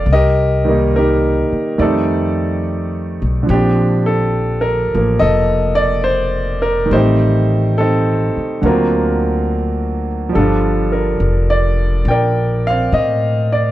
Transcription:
0.06 1.46 C2 medium
0.12 0.96 G4 medium
0.12 0.94 A#4 medium
0.12 0.97 D#5 medium
0.65 1.77 D#3 soft
0.65 1.77 G3 soft
0.69 1.79 A#3 soft
0.69 0.97 D#4 soft
0.96 1.76 D#4 soft
0.96 1.76 G4 soft
0.96 1.82 A#4 medium
1.52 muted upright bass stroke soft
1.78 3.19 F2 medium
1.78 3.49 D#3 soft
1.78 3.49 G3 soft
1.78 3.49 A3 soft
1.78 3.20 A4 soft
1.78 3.49 D5 medium
1.83 3.47 C4 soft
1.83 3.47 D#4 soft
3.22 3.46 B1 medium
3.43 6.88 D3 soft
3.43 4.93 F3 soft
3.49 4.89 A#1 medium
3.49 5.18 D4 medium
3.49 4.02 G4 medium
3.54 6.94 C4 soft
4.06 4.65 A4 medium
4.61 5.21 A#4 medium
4.94 5.18 A1 medium
4.94 6.92 F3 soft
4.94 6.93 A#3 soft
5.19 6.88 F1 medium
5.19 6.87 A4 soft
5.19 5.78 D#5 medium
5.75 6.05 D5 medium
6.04 6.63 C5 medium
6.62 6.89 A#4 medium
6.86 8.60 D#3 soft
6.86 8.62 G3 soft
6.91 8.32 A1 medium
6.91 8.64 A3 soft
6.91 7.79 D#4 medium
6.91 8.60 G4 soft
6.91 7.73 C5 medium
6.97 7.79 C4 medium
7.78 8.60 C4 soft
7.78 8.60 D#4 soft
7.78 8.66 A4 medium
8.37 muted upright bass stroke soft
8.62 10.30 D2 medium
8.62 10.34 D3 soft
8.62 10.35 F#3 soft
8.66 10.36 A#3 soft
8.66 10.36 C4 soft
8.66 10.32 F4 soft
8.66 10.33 F#4 soft
8.66 10.05 A#4 medium
10.29 13.71 F3 soft
10.29 13.71 G3 soft
10.35 11.17 G1 medium
10.35 13.71 D3 soft
10.35 12.04 D4 soft
10.35 12.04 F4 soft
10.35 10.88 A4 medium
10.92 11.51 A#4 soft
11.20 12.02 F1 medium
11.50 12.08 D5 medium
12.05 12.88 A#1 medium
12.05 12.66 G5 medium
12.10 13.71 A#4 soft
12.10 13.51 D5 soft
12.67 13.71 C4 soft
12.67 12.95 F5 medium
12.92 13.71 A2 medium
12.92 13.52 D#5 medium
13.52 13.71 D5 medium

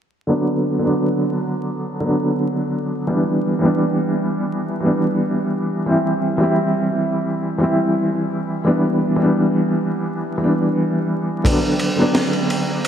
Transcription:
0.27 0.77 D3 medium
0.27 0.77 F#3 medium
0.27 0.78 B3 medium
0.27 0.78 D4 medium
0.79 1.98 D3 medium
0.79 1.98 F#3 medium
0.79 1.99 B3 medium
0.85 2.00 D4 medium
2.00 3.02 D3 medium
2.00 3.03 F#3 medium
2.00 3.04 B3 medium
2.06 3.05 D4 medium
3.07 3.56 E3 medium
3.07 3.57 G3 medium
3.07 3.57 B3 medium
3.07 3.58 D4 medium
3.59 4.77 E3 medium
3.59 4.78 G3 medium
3.63 4.79 B3 medium
3.63 4.80 D4 medium
4.80 5.82 E3 medium
4.80 5.83 G3 medium
4.80 5.84 B3 medium
4.86 5.85 D4 medium
5.86 6.35 E3 medium
5.86 6.36 G3 medium
5.86 6.36 C4 medium
5.86 6.37 E4 medium
6.38 7.56 E3 medium
6.38 7.57 G3 medium
6.42 7.58 C4 medium
6.42 7.59 E4 medium
7.58 8.60 E3 medium
7.58 8.61 G3 medium
7.58 8.62 C4 medium
7.64 8.63 E4 medium
8.65 9.14 E3 medium
8.65 9.14 G3 medium
8.65 9.15 B3 medium
8.65 9.15 D4 medium
9.16 10.35 E3 medium
9.16 10.36 G3 medium
9.16 10.37 B3 medium
9.22 10.38 D4 medium
10.38 11.40 E3 medium
10.38 11.41 G3 medium
10.38 11.42 B3 medium
10.44 11.43 D4 medium
11.44 11.93 D3 medium
11.44 11.94 F#3 medium
11.44 11.94 B3 medium
11.44 11.95 D4 medium
11.44 kick medium
11.44 ride medium
11.79 ride medium
11.96 12.88 D3 medium
11.96 12.88 F#3 medium
11.96 12.88 B3 medium
12.01 12.88 D4 medium
12.15 snare medium
12.15 ride medium
12.33 ride soft
12.50 ride medium
12.85 ride medium

